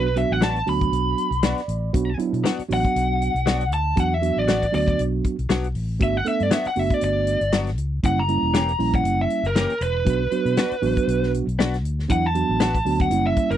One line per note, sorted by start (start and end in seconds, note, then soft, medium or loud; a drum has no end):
0.00 0.23 B1 loud
0.00 0.16 B4 medium
0.16 0.47 F#3 medium
0.16 0.47 B3 medium
0.16 0.47 D4 medium
0.16 0.47 F#4 medium
0.16 0.32 E5 medium
0.16 closed hi-hat medium
0.30 0.61 A1 medium
0.30 0.43 F#5 medium
0.41 0.57 F#3 medium
0.41 0.58 B3 medium
0.41 0.58 D4 medium
0.41 0.59 F#4 medium
0.41 0.67 A5 medium
0.41 snare loud
0.41 closed hi-hat medium
0.56 closed hi-hat soft
0.66 0.88 D2 medium
0.66 1.29 F#3 medium
0.66 1.29 B3 medium
0.66 1.29 D4 medium
0.66 1.29 F#4 medium
0.66 2.17 B5 medium
0.66 open hi-hat medium
0.81 kick medium
0.81 closed hi-hat soft
0.92 1.13 B1 loud
0.92 closed hi-hat medium
1.18 closed hi-hat medium
1.31 1.52 B1 medium
1.31 closed hi-hat soft
1.43 1.59 F#3 medium
1.43 1.60 B3 medium
1.43 1.60 D4 loud
1.43 1.61 F#4 medium
1.43 1.91 D5 medium
1.43 snare loud
1.43 closed hi-hat medium
1.58 snare soft
1.58 closed hi-hat soft
1.68 1.89 A1 medium
1.68 closed hi-hat medium
1.93 2.15 B1 medium
1.93 2.10 F#3 medium
1.93 2.10 B3 medium
1.93 2.10 D4 medium
1.93 2.10 F#4 medium
1.93 kick loud
1.93 closed hi-hat medium
2.18 2.50 F#3 medium
2.18 2.50 B3 medium
2.18 2.50 D4 medium
2.18 2.50 E4 medium
2.18 closed hi-hat medium
2.33 2.43 B2 medium
2.33 closed hi-hat soft
2.44 2.61 F#3 medium
2.44 2.61 B3 medium
2.44 2.61 D4 medium
2.44 2.62 F#4 loud
2.44 snare loud
2.44 closed hi-hat medium
2.59 muted fingered electric bass stroke soft
2.59 closed hi-hat soft
2.68 2.82 A1 medium
2.68 3.31 F#3 medium
2.68 3.32 B3 medium
2.68 3.32 D4 medium
2.68 3.32 F#4 medium
2.68 open hi-hat medium
2.74 3.71 F#5 loud
2.85 kick medium
2.85 closed hi-hat soft
2.96 3.29 B1 medium
2.96 closed hi-hat medium
3.22 closed hi-hat medium
3.34 3.71 B1 medium
3.34 closed hi-hat soft
3.46 3.62 F#3 medium
3.46 3.63 B3 medium
3.46 3.63 D4 loud
3.46 3.64 F#4 loud
3.46 snare loud
3.46 closed hi-hat medium
3.61 closed hi-hat soft
3.71 3.93 D2 medium
3.71 3.98 A5 loud
3.71 closed hi-hat medium
3.96 4.30 E2 loud
3.96 4.13 F#3 medium
3.96 4.13 B3 medium
3.96 4.13 D4 medium
3.96 4.13 F#4 medium
3.96 kick loud
3.96 closed hi-hat medium
4.00 4.14 F#5 medium
4.14 4.37 E5 medium
4.21 4.53 F#3 medium
4.21 4.53 B3 medium
4.21 4.53 D4 medium
4.21 4.53 F#4 medium
4.21 closed hi-hat medium
4.37 4.67 A1 medium
4.37 4.73 D5 medium
4.48 4.64 F#3 medium
4.48 4.65 B3 medium
4.48 4.65 D4 medium
4.48 4.65 F#4 medium
4.48 snare loud
4.48 closed hi-hat medium
4.62 kick medium
4.62 closed hi-hat soft
4.71 4.95 D2 medium
4.71 5.35 F#3 medium
4.71 5.35 B3 medium
4.71 5.35 D4 medium
4.71 5.35 F#4 medium
4.71 4.99 D5 loud
4.71 open hi-hat medium
4.87 kick medium
4.87 closed hi-hat soft
4.99 5.20 B1 loud
4.99 closed hi-hat medium
5.25 kick medium
5.25 closed hi-hat medium
5.39 5.48 B1 medium
5.39 closed hi-hat soft
5.49 5.73 B1 medium
5.49 5.66 F#3 medium
5.49 5.66 B3 medium
5.49 5.67 D4 medium
5.49 5.67 F#4 loud
5.49 snare loud
5.49 closed hi-hat medium
5.64 closed hi-hat soft
5.75 5.98 A1 medium
5.75 open hi-hat medium
5.99 6.22 G1 medium
5.99 6.16 A3 medium
5.99 6.17 B3 medium
5.99 6.17 D4 medium
5.99 6.17 F#4 medium
5.99 6.17 E5 loud
5.99 kick loud
5.99 closed hi-hat medium
6.17 6.27 F#5 medium
6.25 6.56 A3 medium
6.25 6.56 B3 medium
6.25 6.56 D4 medium
6.25 6.57 A4 medium
6.25 6.43 E5 medium
6.25 closed hi-hat medium
6.40 6.50 G2 medium
6.40 6.52 D5 loud
6.40 closed hi-hat soft
6.51 6.67 F#3 medium
6.51 6.68 B3 medium
6.51 6.68 D4 medium
6.51 6.68 F#4 medium
6.51 6.66 E5 medium
6.51 snare loud
6.51 closed hi-hat loud
6.65 6.79 F#5 medium
6.65 muted fingered electric bass stroke soft
6.65 closed hi-hat soft
6.76 6.88 F#1 medium
6.76 7.38 A3 medium
6.76 7.38 B3 medium
6.76 7.39 D4 medium
6.76 7.39 F#4 medium
6.76 6.94 E5 medium
6.76 open hi-hat medium
6.90 7.03 D5 medium
6.90 kick medium
6.90 closed hi-hat soft
7.01 7.35 G1 medium
7.01 7.52 D5 loud
7.01 closed hi-hat medium
7.27 closed hi-hat medium
7.41 7.78 G1 medium
7.41 closed hi-hat soft
7.52 7.69 F#3 medium
7.52 7.69 B3 medium
7.52 7.70 D4 medium
7.52 7.70 F#4 medium
7.52 snare loud
7.52 closed hi-hat medium
7.67 snare soft
7.67 closed hi-hat soft
7.78 7.99 C#2 medium
7.78 closed hi-hat medium
8.03 8.36 F#1 loud
8.03 8.20 G3 medium
8.03 8.20 A#3 medium
8.03 8.20 C#4 medium
8.03 8.20 E4 medium
8.03 8.18 F#5 loud
8.03 kick loud
8.03 closed hi-hat medium
8.19 8.92 A#5 medium
8.28 8.60 G3 medium
8.28 8.60 A#3 medium
8.28 8.60 C#4 medium
8.28 8.60 E4 medium
8.28 closed hi-hat medium
8.42 8.73 E1 medium
8.54 8.70 E3 medium
8.54 8.71 A#3 medium
8.54 8.71 C#4 medium
8.54 8.72 G4 medium
8.54 snare loud
8.54 closed hi-hat medium
8.69 closed hi-hat soft
8.79 9.01 A#1 medium
8.79 9.41 G3 medium
8.79 9.41 A#3 medium
8.79 9.42 C#4 medium
8.79 9.42 E4 medium
8.79 open hi-hat medium
8.94 9.19 F#5 loud
8.94 kick medium
8.94 closed hi-hat soft
9.03 9.25 F#1 loud
9.03 closed hi-hat medium
9.21 9.45 E5 medium
9.30 closed hi-hat medium
9.43 9.65 F#1 loud
9.43 9.81 A#4 loud
9.43 closed hi-hat soft
9.55 9.72 E3 medium
9.55 9.73 A#3 medium
9.55 9.73 C#4 medium
9.55 9.73 G4 medium
9.55 snare loud
9.55 closed hi-hat medium
9.70 closed hi-hat soft
9.81 10.02 E1 medium
9.81 11.30 B4 loud
9.81 closed hi-hat medium
10.05 10.27 B1 loud
10.05 10.22 F#3 medium
10.05 10.22 B3 medium
10.05 10.22 D4 medium
10.05 10.23 F#4 medium
10.05 kick loud
10.05 closed hi-hat medium
10.31 10.63 F#3 medium
10.31 10.63 B3 medium
10.31 10.63 D4 medium
10.31 10.63 F#4 medium
10.31 muted fingered electric bass stroke soft
10.31 closed hi-hat medium
10.45 10.55 B2 medium
10.45 closed hi-hat soft
10.57 10.74 B3 medium
10.57 10.74 D4 loud
10.57 10.75 F#4 loud
10.57 snare loud
10.57 closed hi-hat medium
10.71 muted fingered electric bass stroke soft
10.71 closed hi-hat soft
10.82 10.94 A1 medium
10.82 11.44 F#3 medium
10.82 11.44 B3 medium
10.82 11.45 D4 medium
10.82 11.45 F#4 loud
10.82 open hi-hat medium
10.97 kick medium
10.97 closed hi-hat soft
11.08 11.41 B1 medium
11.08 closed hi-hat medium
11.23 snare soft
11.34 closed hi-hat medium
11.47 11.83 B1 medium
11.47 closed hi-hat soft
11.59 11.75 B3 medium
11.59 11.76 D4 loud
11.59 11.76 F#4 loud
11.59 snare loud
11.59 closed hi-hat medium
11.74 snare soft
11.74 closed hi-hat soft
11.83 12.05 D2 medium
11.83 closed hi-hat medium
11.99 snare soft
12.09 12.42 E2 loud
12.09 12.25 F#3 medium
12.09 12.26 B3 medium
12.09 12.26 D4 medium
12.09 12.26 E4 medium
12.09 12.26 F#5 loud
12.09 kick loud
12.09 closed hi-hat medium
12.26 12.99 A5 loud
12.34 12.66 F#3 medium
12.34 12.66 B3 medium
12.34 12.66 D4 medium
12.34 12.66 F#4 medium
12.34 closed hi-hat medium
12.49 12.80 A1 medium
12.60 12.77 B3 medium
12.60 12.77 D4 medium
12.60 12.78 F#4 loud
12.60 snare loud
12.60 closed hi-hat medium
12.75 kick medium
12.75 closed hi-hat soft
12.85 13.07 D2 medium
12.85 13.11 F#3 medium
12.85 13.11 B3 medium
12.85 13.11 D4 medium
12.85 13.11 F#4 medium
12.85 open hi-hat medium
13.00 13.25 F#5 medium
13.00 kick medium
13.00 closed hi-hat soft
13.10 13.32 F#1 loud
13.10 13.57 G3 medium
13.10 13.57 A#3 medium
13.10 13.57 C#4 medium
13.10 13.57 E4 medium
13.10 closed hi-hat medium
13.26 13.50 E5 medium
13.37 kick medium
13.37 closed hi-hat medium
13.51 13.57 F#1 loud
13.51 13.57 A#4 loud
13.51 closed hi-hat soft